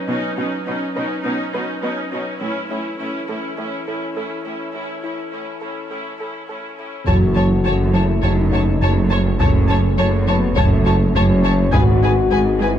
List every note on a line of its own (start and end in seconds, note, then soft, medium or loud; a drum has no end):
0.00 2.40 F#3 medium
0.00 2.39 C#4 medium
0.00 2.40 D#4 medium
0.00 2.36 B4 medium
0.08 0.16 B2 medium
0.08 0.26 B3 medium
0.08 0.36 C#4 medium
0.08 0.36 D#4 medium
0.37 0.46 B2 soft
0.37 0.64 C#4 soft
0.37 0.65 D#4 soft
0.37 0.55 F#4 soft
0.66 0.75 B2 soft
0.66 0.94 C#4 soft
0.66 0.94 D#4 soft
0.95 1.05 B2 soft
0.95 1.22 C#4 soft
0.95 1.22 D#4 soft
0.95 1.13 B4 medium
1.23 1.34 B2 soft
1.23 1.42 B3 medium
1.23 1.51 C#4 soft
1.23 1.51 D#4 medium
1.52 1.63 B2 soft
1.52 1.81 C#4 soft
1.52 1.81 D#4 soft
1.52 1.71 B4 medium
1.82 1.91 B2 soft
1.82 2.10 C#4 soft
1.82 2.10 D#4 soft
1.82 2.00 B4 medium
2.11 2.20 B2 soft
2.11 2.39 C#4 soft
2.11 2.40 D#4 soft
2.40 2.49 A2 soft
2.40 7.07 E3 medium
2.40 2.59 A3 medium
2.40 2.69 C#4 soft
2.40 7.03 C#4 medium
2.40 2.68 E4 soft
2.40 7.07 E4 medium
2.40 7.05 A4 medium
2.40 taiko soft
2.69 2.78 A2 soft
2.69 2.98 C#4 soft
2.69 2.98 E4 soft
2.69 2.88 E4 soft
2.99 3.08 A2 soft
2.99 3.27 C#4 soft
2.99 3.28 E4 soft
3.28 3.36 A2 soft
3.28 3.57 C#4 soft
3.28 3.56 E4 soft
3.28 3.46 A4 soft
3.28 taiko soft
3.58 3.66 A2 soft
3.58 3.75 A3 medium
3.58 3.85 C#4 soft
3.58 3.85 E4 soft
3.86 3.95 A2 soft
3.86 4.14 C#4 soft
3.86 4.14 E4 soft
3.86 4.05 A4 soft
4.15 4.24 A2 soft
4.15 4.44 C#4 soft
4.15 4.43 E4 soft
4.15 4.34 A4 soft
4.44 4.53 A2 soft
4.44 4.72 C#4 soft
4.44 4.72 E4 soft
4.73 4.82 A2 soft
4.73 4.92 A3 medium
4.73 5.01 C#4 soft
4.73 5.02 E4 soft
5.02 5.11 A2 soft
5.02 5.30 C#4 soft
5.02 5.30 E4 soft
5.02 5.21 E4 soft
5.31 5.41 A2 soft
5.31 5.60 C#4 soft
5.31 5.60 E4 soft
5.61 5.70 A2 soft
5.61 5.89 C#4 soft
5.61 5.89 E4 soft
5.61 5.79 A4 soft
5.90 5.99 A2 soft
5.90 6.08 A3 medium
5.90 6.19 C#4 soft
5.90 6.18 E4 soft
6.20 6.28 A2 soft
6.20 6.48 C#4 soft
6.20 6.48 E4 soft
6.20 6.38 A4 soft
6.47 6.57 A2 soft
6.47 7.02 C#4 soft
6.47 6.77 C#4 soft
6.47 6.77 E4 soft
6.47 6.66 A4 soft
6.78 6.86 A2 soft
6.78 7.06 C#4 soft
6.78 7.06 E4 soft
7.06 11.74 F#1 medium
7.06 7.58 F#1 soft
7.06 7.59 F#1 soft
7.06 7.24 F#2 medium
7.06 7.59 F#2 soft
7.06 7.25 F#3 medium
7.06 11.69 A3 medium
7.06 11.69 C#4 medium
7.06 11.69 F#4 medium
7.06 7.93 F#4 medium
7.06 11.69 A4 medium
7.06 7.15 C#5 soft
7.06 7.15 A5 soft
7.06 taiko medium
7.35 7.54 F#3 soft
7.35 7.54 C#4 soft
7.35 7.44 C#5 soft
7.35 7.45 C#5 soft
7.35 7.43 A5 soft
7.64 8.16 F#1 soft
7.64 8.17 F#2 soft
7.64 7.83 F#3 medium
7.64 7.73 C#5 soft
7.64 7.75 C#5 soft
7.64 7.72 A5 soft
7.94 8.12 F#3 medium
7.94 8.23 E4 medium
7.94 8.02 C#5 soft
7.94 8.02 A5 soft
8.23 8.75 F#1 soft
8.23 8.41 F#2 medium
8.23 8.75 F#2 soft
8.23 8.41 F#3 medium
8.23 9.11 D#4 medium
8.23 8.31 C#5 soft
8.23 8.31 A5 soft
8.52 8.70 F#2 soft
8.52 8.70 F#4 soft
8.52 8.61 C#5 soft
8.52 8.61 A5 soft
8.81 9.33 F#1 soft
8.81 9.33 F#1 medium
8.81 8.99 F#2 medium
8.81 9.33 F#2 soft
8.81 8.99 A3 medium
8.81 8.91 C#5 soft
8.81 8.92 C#5 soft
8.81 8.90 A5 soft
9.10 9.28 F#3 medium
9.10 9.40 C#4 medium
9.10 9.20 C#5 soft
9.10 9.18 A5 soft
9.40 9.92 F#1 medium
9.40 9.57 F#2 medium
9.40 9.92 F#2 medium
9.40 9.58 F#3 medium
9.40 10.26 C#4 medium
9.40 9.49 C#5 medium
9.40 9.48 A5 medium
9.40 taiko medium
9.68 9.87 F#3 medium
9.68 9.87 C#4 medium
9.68 9.77 C#5 soft
9.68 9.78 C#5 soft
9.68 9.76 A5 soft
9.98 10.50 F#1 medium
9.98 10.50 F#2 medium
9.98 10.15 F#3 medium
9.98 10.06 C#5 soft
9.98 10.06 A5 medium
10.27 10.45 F#3 medium
10.27 10.56 B3 medium
10.27 10.35 C#5 soft
10.27 10.36 C#5 medium
10.27 10.36 A5 soft
10.56 11.08 F#1 medium
10.56 10.74 F#2 medium
10.56 11.08 F#2 medium
10.56 10.74 F#3 medium
10.56 11.15 A3 medium
10.56 10.64 C#5 medium
10.56 10.65 C#5 medium
10.56 10.65 A5 medium
10.56 taiko medium
10.85 11.03 F#2 medium
10.85 11.03 F#4 medium
10.85 10.94 C#5 soft
10.85 10.95 C#5 soft
10.85 10.94 A5 soft
11.15 11.66 F#1 medium
11.15 11.32 F#2 medium
11.15 11.67 F#2 medium
11.15 11.33 A3 medium
11.15 11.72 C#4 medium
11.15 11.23 C#5 medium
11.15 11.24 A5 medium
11.44 11.61 F#3 medium
11.44 11.53 C#5 soft
11.44 11.53 A5 medium
11.73 12.79 G#1 medium
11.73 12.24 G#1 medium
11.73 12.25 G#1 medium
11.73 11.91 G#2 medium
11.73 12.25 G#2 medium
11.73 12.79 G#3 medium
11.73 11.91 G#3 medium
11.73 12.60 F#4 medium
11.73 12.79 G#4 medium
11.73 11.82 G#4 medium
11.73 11.81 B4 medium
11.73 12.79 B4 medium
11.73 12.79 D#5 medium
11.73 11.81 G#5 medium
11.73 taiko medium
12.02 12.19 G#3 medium
12.02 12.20 D#4 medium
12.02 12.11 G#4 soft
12.02 12.11 B4 soft
12.02 12.11 G#5 soft
12.31 12.79 G#1 medium
12.31 12.79 G#2 medium
12.31 12.49 G#3 medium
12.31 12.39 G#4 soft
12.31 12.39 B4 soft
12.31 12.40 G#5 medium
12.59 12.78 G#3 medium
12.59 12.79 E4 medium
12.59 12.67 G#4 soft
12.59 12.69 B4 soft
12.59 12.70 G#5 soft